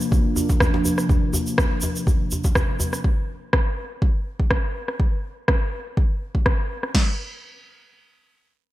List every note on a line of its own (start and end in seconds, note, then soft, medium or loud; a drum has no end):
0.00 3.01 C3 medium
0.00 3.01 F3 medium
0.00 3.01 A#3 medium
0.00 3.01 D4 medium
0.00 shaker soft
0.11 kick loud
0.11 djembe tone medium
0.11 shaker soft
0.36 djembe tone medium
0.36 shaker medium
0.49 kick medium
0.49 djembe slap medium
0.49 shaker soft
0.60 kick loud
0.60 cross-stick loud
0.60 djembe tone loud
0.60 shaker soft
0.74 djembe slap medium
0.85 djembe tone medium
0.85 shaker medium
0.98 cross-stick medium
0.98 shaker medium
1.09 kick loud
1.09 djembe tone medium
1.09 shaker soft
1.33 djembe tone medium
1.33 shaker medium
1.47 shaker soft
1.58 kick loud
1.58 cross-stick loud
1.58 djembe tone medium
1.58 shaker soft
1.81 djembe tone medium
1.81 shaker medium
1.96 shaker medium
2.07 kick loud
2.07 djembe tone medium
2.07 shaker soft
2.31 djembe tone medium
2.31 shaker medium
2.44 kick medium
2.44 djembe slap medium
2.44 shaker soft
2.55 kick loud
2.55 cross-stick loud
2.55 djembe tone medium
2.55 shaker soft
2.80 djembe tone medium
2.80 shaker medium
2.93 cross-stick medium
2.93 shaker soft
3.04 kick loud
3.53 kick loud
3.53 cross-stick loud
4.02 kick loud
4.40 kick medium
4.50 kick loud
4.50 cross-stick loud
4.88 cross-stick medium
5.00 kick loud
5.48 kick loud
5.48 cross-stick loud
5.97 kick loud
6.35 kick medium
6.46 kick loud
6.46 cross-stick loud
6.83 cross-stick medium
6.95 kick loud
6.95 snare loud
6.95 crash medium